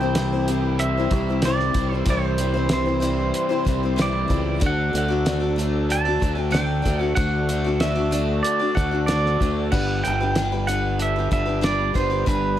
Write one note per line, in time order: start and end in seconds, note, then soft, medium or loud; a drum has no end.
0.00 1.08 C2 medium
0.00 1.11 C3 medium
0.00 0.13 E3 medium
0.00 0.17 G3 soft
0.00 0.77 C4 medium
0.00 2.05 C4 medium
0.00 0.17 C4 soft
0.00 2.05 E4 medium
0.00 0.17 E4 soft
0.00 2.05 G4 medium
0.00 0.16 C5 medium
0.00 0.79 G5 medium
0.15 0.32 C3 medium
0.15 0.32 E3 medium
0.15 0.33 G3 medium
0.15 0.33 C4 medium
0.15 0.33 E4 medium
0.15 0.31 C5 medium
0.15 snare loud
0.15 closed hi-hat medium
0.33 0.47 G3 soft
0.33 0.48 C4 soft
0.33 0.49 E4 soft
0.33 0.48 C5 soft
0.48 0.96 G3 medium
0.48 0.96 C4 medium
0.48 0.97 E4 medium
0.48 0.96 C5 medium
0.48 closed hi-hat medium
0.78 2.38 C4 medium
0.78 1.45 E5 medium
0.78 closed hi-hat medium
0.98 1.12 G3 soft
0.98 1.13 C4 soft
0.98 1.13 E4 soft
0.98 1.12 C5 soft
1.11 1.71 C2 medium
1.11 1.28 G3 soft
1.11 1.29 C4 soft
1.11 kick medium
1.11 closed hi-hat medium
1.16 1.29 E4 medium
1.16 1.28 C5 medium
1.29 1.45 G3 soft
1.29 1.45 C4 soft
1.29 1.45 E4 soft
1.29 1.44 C5 soft
1.42 1.76 C3 medium
1.42 1.76 E3 medium
1.42 1.75 G3 medium
1.42 1.94 D5 medium
1.42 snare medium
1.42 closed hi-hat medium
1.46 1.75 C4 medium
1.46 1.77 E4 medium
1.46 1.77 C5 medium
1.59 snare soft
1.74 2.04 C2 medium
1.74 1.91 G3 soft
1.74 1.92 C4 medium
1.74 1.93 E4 medium
1.74 kick medium
1.74 closed hi-hat medium
1.79 1.91 C5 medium
1.93 2.07 G3 soft
1.93 2.08 C4 soft
1.93 2.08 E4 soft
1.93 2.08 C5 soft
1.93 2.10 C5 medium
2.06 3.31 C2 medium
2.06 2.39 C3 medium
2.06 2.40 E3 medium
2.06 2.37 G3 medium
2.06 4.60 C4 medium
2.06 2.38 C4 medium
2.06 4.60 E4 medium
2.06 2.40 E4 medium
2.06 4.60 G4 medium
2.06 kick loud
2.06 closed hi-hat medium
2.10 2.72 C5 medium
2.10 2.40 C5 medium
2.38 2.69 E3 medium
2.38 2.55 G3 medium
2.38 2.55 C4 medium
2.38 2.54 E4 medium
2.38 closed hi-hat medium
2.42 2.53 C5 medium
2.54 2.70 G3 soft
2.54 2.70 C4 soft
2.54 2.70 E4 soft
2.54 2.70 C5 medium
2.69 2.86 C3 medium
2.69 2.86 E3 medium
2.69 2.87 G3 medium
2.69 2.87 C4 medium
2.69 2.86 E4 medium
2.69 2.84 C5 medium
2.69 snare loud
2.69 closed hi-hat medium
2.73 4.03 C5 medium
2.86 2.99 G3 soft
2.86 3.00 C4 soft
2.86 3.02 E4 soft
2.86 3.02 C5 soft
3.00 3.49 G3 medium
3.00 3.50 C4 medium
3.00 3.49 E4 medium
3.00 3.48 C5 medium
3.00 closed hi-hat medium
3.34 4.62 C4 medium
3.34 closed hi-hat medium
3.49 3.64 G3 soft
3.49 3.65 C4 soft
3.49 3.66 E4 medium
3.49 3.66 C5 soft
3.65 4.27 C2 medium
3.65 3.82 G3 medium
3.65 3.83 C4 medium
3.65 3.83 E4 medium
3.65 3.82 C5 medium
3.65 kick medium
3.65 closed hi-hat medium
3.83 3.96 G3 soft
3.83 3.97 C4 soft
3.83 3.97 E4 soft
3.83 3.97 C5 soft
3.96 4.29 C3 medium
3.96 4.30 E3 medium
3.96 4.27 G3 medium
3.96 4.28 C4 medium
3.96 4.30 E4 medium
3.96 4.30 C5 medium
3.96 snare loud
3.96 closed hi-hat medium
4.02 4.66 D5 medium
4.28 4.60 C#2 medium
4.28 4.61 G3 medium
4.28 4.61 C4 medium
4.28 4.61 E4 medium
4.28 kick medium
4.28 closed hi-hat medium
4.32 4.63 C5 medium
4.60 4.91 D2 medium
4.60 4.93 D3 medium
4.60 7.14 F#3 medium
4.60 4.92 A3 medium
4.60 7.14 D4 medium
4.60 4.93 D4 medium
4.60 4.94 F#4 medium
4.60 7.14 A4 medium
4.60 4.94 D5 medium
4.60 kick loud
4.60 closed hi-hat medium
4.66 4.97 F#5 medium
4.93 6.18 D2 medium
4.93 5.10 A3 medium
4.93 5.10 D4 medium
4.93 5.09 F#4 medium
4.93 5.07 D5 medium
4.93 closed hi-hat medium
4.98 5.56 F#5 medium
5.08 5.25 D4 soft
5.08 5.26 F#4 medium
5.08 5.25 D5 medium
5.25 5.42 D3 medium
5.25 5.42 A3 medium
5.25 5.42 D4 medium
5.25 5.40 F#4 medium
5.25 5.39 D5 medium
5.25 snare loud
5.25 closed hi-hat medium
5.40 5.57 D4 soft
5.40 5.57 F#4 soft
5.40 5.57 D5 soft
5.56 6.05 A3 medium
5.56 6.06 D4 medium
5.56 6.06 F#4 medium
5.56 closed hi-hat medium
5.60 6.04 D5 medium
5.89 7.49 D4 medium
5.89 6.41 A5 loud
5.89 closed hi-hat medium
6.05 6.20 D4 soft
6.05 6.21 F#4 soft
6.05 6.21 D5 soft
6.20 6.82 D2 medium
6.20 6.37 A3 soft
6.20 6.37 D4 medium
6.20 6.35 F#4 soft
6.20 6.34 D5 medium
6.20 kick medium
6.20 closed hi-hat medium
6.35 6.51 D4 soft
6.35 6.53 F#4 soft
6.35 6.52 D5 soft
6.41 6.52 G5 loud
6.51 6.84 D3 medium
6.51 6.81 A3 medium
6.51 6.82 D4 medium
6.51 6.85 D5 medium
6.51 6.99 G5 medium
6.51 closed hi-hat medium
6.55 snare loud
6.82 7.00 A3 medium
6.82 7.00 D4 soft
6.82 7.00 F#4 medium
6.82 6.98 D5 medium
6.82 kick medium
6.82 snare soft
6.82 closed hi-hat medium
6.86 7.15 D2 medium
6.99 7.17 F#4 soft
6.99 7.16 D5 soft
6.99 7.15 F#5 medium
7.03 7.16 D4 soft
7.15 8.41 D2 medium
7.15 7.49 D3 medium
7.15 7.48 A3 medium
7.15 7.49 D4 medium
7.15 7.49 F#4 medium
7.15 7.50 D5 medium
7.15 7.82 F#5 medium
7.15 kick loud
7.15 closed hi-hat medium
7.19 9.71 D4 medium
7.19 9.71 F#4 medium
7.19 9.71 A4 medium
7.49 7.65 A3 medium
7.49 7.66 D4 medium
7.49 7.65 F#4 medium
7.49 7.63 D5 medium
7.49 closed hi-hat medium
7.64 7.82 D4 soft
7.64 7.82 F#4 soft
7.64 7.81 D5 medium
7.80 7.97 D3 medium
7.80 7.97 A3 medium
7.80 7.97 D4 medium
7.80 7.95 F#4 medium
7.80 7.94 D5 medium
7.80 8.41 E5 medium
7.80 snare loud
7.80 closed hi-hat medium
7.95 8.11 D4 soft
7.95 8.12 F#4 soft
7.95 8.12 D5 soft
8.11 8.60 A3 medium
8.11 8.60 D4 medium
8.11 8.60 F#4 medium
8.11 8.58 D5 medium
8.11 closed hi-hat medium
8.43 9.73 D4 medium
8.43 8.77 D5 medium
8.43 closed hi-hat medium
8.59 8.75 D4 soft
8.59 8.76 F#4 soft
8.59 8.76 D5 soft
8.75 9.36 D2 medium
8.75 8.92 A3 soft
8.75 8.92 D4 soft
8.75 8.91 F#4 soft
8.75 8.90 D5 medium
8.75 9.36 F#5 medium
8.75 kick medium
8.75 closed hi-hat medium
8.91 9.07 D4 soft
8.91 9.08 F#4 soft
8.91 9.08 D5 soft
9.06 9.40 D3 medium
9.06 9.39 A3 medium
9.06 9.40 D4 medium
9.06 9.41 F#4 medium
9.06 9.67 D5 medium
9.06 9.41 D5 medium
9.06 snare medium
9.06 closed hi-hat medium
9.26 snare soft
9.40 9.70 D2 medium
9.40 9.71 A3 soft
9.40 9.71 D4 medium
9.40 9.73 F#4 medium
9.40 9.73 D5 medium
9.40 kick medium
9.40 closed hi-hat medium
9.72 10.02 G1 medium
9.72 11.32 G2 medium
9.72 10.02 G3 medium
9.72 10.04 D4 medium
9.72 10.04 G4 medium
9.72 10.05 B4 medium
9.72 10.03 F#5 medium
9.72 kick loud
9.72 crash medium
10.03 11.29 G1 medium
10.03 11.64 D3 medium
10.03 10.20 G3 soft
10.03 10.21 D4 soft
10.03 10.21 G4 medium
10.03 10.19 B4 medium
10.03 10.67 G5 medium
10.03 closed hi-hat medium
10.20 10.35 D4 soft
10.20 10.37 G4 medium
10.20 10.36 B4 soft
10.35 10.52 G3 medium
10.35 10.52 D4 medium
10.35 10.53 G4 medium
10.35 10.51 B4 medium
10.35 snare loud
10.35 closed hi-hat medium
10.52 10.68 D4 soft
10.52 10.68 G4 soft
10.52 10.68 B4 soft
10.67 11.15 G3 medium
10.67 11.30 B3 medium
10.67 11.16 D4 medium
10.67 11.16 G4 medium
10.67 11.15 B4 medium
10.67 11.00 F#5 loud
10.67 closed hi-hat medium
10.99 12.58 D4 medium
10.99 11.32 E5 medium
10.99 closed hi-hat medium
11.16 11.31 D4 soft
11.16 11.32 G4 soft
11.16 11.32 B4 soft
11.31 11.91 G1 medium
11.31 11.47 G3 soft
11.31 11.93 B3 soft
11.31 11.48 D4 medium
11.31 11.46 G4 medium
11.31 11.44 B4 medium
11.31 11.65 E5 medium
11.31 kick medium
11.31 closed hi-hat medium
11.46 11.61 D4 soft
11.46 11.62 G4 soft
11.46 11.62 B4 soft
11.61 11.93 G3 medium
11.61 11.94 D4 medium
11.61 11.95 G4 medium
11.61 11.95 B4 medium
11.61 11.97 D5 medium
11.61 snare loud
11.61 closed hi-hat medium
11.94 12.25 G1 medium
11.94 12.11 G3 medium
11.94 12.60 B3 medium
11.94 12.11 D4 medium
11.94 12.10 G4 medium
11.94 12.09 B4 medium
11.94 12.25 C5 medium
11.94 kick medium
11.94 closed hi-hat medium
12.10 12.26 D4 soft
12.10 12.26 G4 soft
12.10 12.26 B4 soft
12.26 12.60 G1 medium
12.26 12.60 G2 medium
12.26 12.56 G3 medium
12.26 12.57 D4 medium
12.26 12.59 G4 medium
12.26 12.60 B4 medium
12.26 kick loud
12.26 closed hi-hat medium